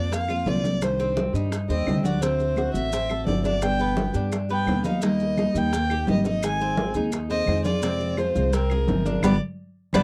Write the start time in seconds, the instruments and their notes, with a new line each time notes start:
Already playing: upright bass F2, nylon-string guitar A#3 C4 F4, cuban tres D4, violin D5
0.11 cuban tres A#3, violin F5, muted nylon-string guitar stroke, high bongo, high conga, maracas
0.28 nylon-string guitar A#3 C4 F4, cuban tres F4, high bongo, high conga, claves, maracas
0.46 upright bass C2, nylon-string guitar D3 A#3 C4 F4, violin D5, high bongo, low bongo, high conga, maracas
0.64 nylon-string guitar A#3 C4, high bongo, high conga, maracas
0.81 nylon-string guitar C3 D#3 G3 D4 G4, violin C5, high bongo, high conga, claves, maracas
0.99 cuban tres C4, high bongo, high conga, maracas
1.16 nylon-string guitar D#3 G3 D4 G4, high bongo, high conga, maracas
1.33 upright bass G2, nylon-string guitar D#3 G3 D4 G4, cuban tres D#4, maracas
1.51 muted nylon-string guitar stroke, high bongo, high conga, claves, maracas
1.68 upright bass D#2, nylon-string guitar G3 D4 G4, cuban tres C4, violin D#5, high bongo, high conga, maracas
1.86 upright bass D2, nylon-string guitar C3 D#3 G3 D4 G4, high bongo, low bongo, high conga, claves, maracas
2.03 nylon-string guitar G3 D4 G4, cuban tres F#4, violin D5, high bongo, high conga, maracas
2.21 nylon-string guitar D3 A3 C4 F#4, cuban tres C4, violin C5, high bongo, high conga, maracas
2.39 high bongo, high conga, maracas
2.56 nylon-string guitar D3 A3 C4 F#4, cuban tres F#4, high bongo, high conga, claves, maracas
2.74 upright bass A1, nylon-string guitar A3 C4 F#4, violin E5, high conga, maracas
2.92 cuban tres C4, muted nylon-string guitar stroke, high bongo, high conga, maracas
3.09 nylon-string guitar A3 C4 F#4, cuban tres A4, high bongo, high conga, claves, maracas
3.26 upright bass G1, nylon-string guitar D3 A3 C4 F#4, violin D5, high bongo, low bongo, high conga, maracas
3.44 nylon-string guitar A3 C4 F#4, cuban tres D4, violin D5, high bongo, high conga, maracas
3.61 nylon-string guitar B2 D3 G3 B3 G4, violin G5, high bongo, high conga, claves, maracas
3.79 cuban tres B3, high bongo, high conga, maracas
3.96 nylon-string guitar D3 G3 B3 G4, high bongo, high conga, maracas
4.14 upright bass G2, nylon-string guitar D3 G3 B3 G4, cuban tres D4, maracas
4.32 muted nylon-string guitar stroke, high bongo, high conga, claves, maracas
4.49 nylon-string guitar G3 B3 G4, cuban tres B3, violin G5, high bongo, high conga, maracas
4.66 upright bass D#2, nylon-string guitar B2 D3 G3 B3 G4, high bongo, low bongo, high conga, claves, maracas
4.84 nylon-string guitar G3 B3 G4, cuban tres D#4, violin F5, high bongo, high conga, maracas
5.01 nylon-string guitar D#3 G3 A#3 D#4 G4, cuban tres A#3, violin D#5, high bongo, high conga, maracas
5.20 high bongo, high conga, maracas
5.37 nylon-string guitar G3 A#3 D#4 G4, cuban tres D#4, high bongo, high conga, claves, maracas
5.54 upright bass D#2, nylon-string guitar G3 A#3 D#4 G4, violin G5, maracas
5.72 cuban tres A#3, muted nylon-string guitar stroke, high bongo, high conga, maracas
5.90 nylon-string guitar A#3 D#4 G4, cuban tres G4, high bongo, high conga, claves, maracas
6.07 upright bass G#1, nylon-string guitar D#3 G3 A#3 D#4 G4, violin D#5, high bongo, low bongo, high conga, maracas
6.24 nylon-string guitar A#3 D#4 G4, cuban tres D#4, violin D#5, high bongo, high conga, maracas
6.42 nylon-string guitar D#3 G#3 C4 D#4 G#4, violin G#5, high bongo, high conga, claves, maracas
6.60 cuban tres C4, high bongo, high conga, maracas
6.77 nylon-string guitar G#3 C4 D#4 G#4, high bongo, high conga, maracas
6.94 upright bass D#2, nylon-string guitar G#3 C4 D#4 G#4, cuban tres D#4, maracas
7.12 muted nylon-string guitar stroke, high bongo, high conga, claves, maracas
7.29 cuban tres C4, nylon-string guitar C4 D#4 G#4, violin D#5, high bongo, high conga, maracas
7.46 upright bass F2, nylon-string guitar D#3 G#3 C4 D#4 G#4, high bongo, low bongo, high conga, claves, maracas
7.64 nylon-string guitar C4 D#4 G#4, cuban tres F4, violin D5, high bongo, high conga, maracas
7.82 nylon-string guitar C3 F3 G#3 C4 F4, cuban tres C4, high bongo, high conga, maracas
8.00 high bongo, high conga, maracas
8.17 nylon-string guitar F3 G#3 C4 F4, cuban tres F4, violin C5, high bongo, high conga, claves, maracas
8.35 upright bass C2, nylon-string guitar F3 G#3 C4 F4, high conga, maracas
8.53 cuban tres C4, violin A#4, muted nylon-string guitar stroke, high bongo, high conga, maracas
8.70 nylon-string guitar G#3 C4 F4, cuban tres G#4, high bongo, high conga, claves, maracas
8.88 upright bass G1, nylon-string guitar C3 F3 G#3 C4 F4, high bongo, low bongo, high conga, maracas
9.05 nylon-string guitar G#3 C4 F4, cuban tres D4, high bongo, high conga, maracas
9.22 upright bass G1, nylon-string guitar G3 B3 D4, cuban tres B3 D4 G4, violin D5, high bongo, high conga, claves, maracas
9.93 upright bass G1, nylon-string guitar G3 B3 D4, cuban tres B3 D4 G4, violin D5, high bongo, high conga, claves, maracas